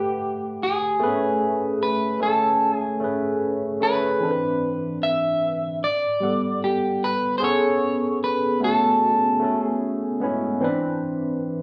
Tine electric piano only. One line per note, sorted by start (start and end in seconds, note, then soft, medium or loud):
0.00 0.78 A3 medium
0.00 0.79 G4 soft
0.00 0.80 B4 medium
0.00 0.79 F#5 medium
0.99 1.98 A3 medium
0.99 1.09 B3 medium
0.99 1.99 G#4 medium
0.99 2.00 B4 medium
1.07 2.02 C#4 medium
2.20 2.88 A3 medium
2.20 2.89 C#4 medium
2.20 2.89 G#5 medium
2.24 2.90 C#5 medium
3.00 3.68 A3 medium
3.00 3.69 C#4 medium
3.00 3.69 G#4 medium
3.04 3.70 B4 medium
3.80 4.21 A3 medium
3.80 4.21 C#4 medium
3.80 4.22 G#4 medium
3.84 4.23 C#5 medium
4.20 5.51 E3 medium
4.20 5.52 C4 medium
4.20 5.52 D4 medium
4.24 4.31 A4 medium
4.31 5.56 B4 medium
6.20 7.18 G3 medium
6.20 7.19 B3 medium
6.20 7.20 F#5 medium
6.25 7.20 A4 medium
7.40 8.39 B3 medium
7.40 8.39 C#4 medium
7.40 8.38 G#4 medium
7.40 8.40 A4 loud
8.60 9.28 A3 medium
8.60 9.29 B3 medium
8.60 9.29 C#4 medium
8.60 9.30 F#4 medium
9.40 10.08 A3 medium
9.40 10.09 B3 medium
9.40 10.09 C#4 medium
9.44 10.10 A4 medium
10.20 10.61 G#3 medium
10.20 10.61 B3 medium
10.20 10.62 C#4 medium
10.20 10.63 E4 medium
10.60 11.62 E3 medium
10.60 11.62 C4 medium
10.60 11.62 D4 medium
10.64 11.62 B4 medium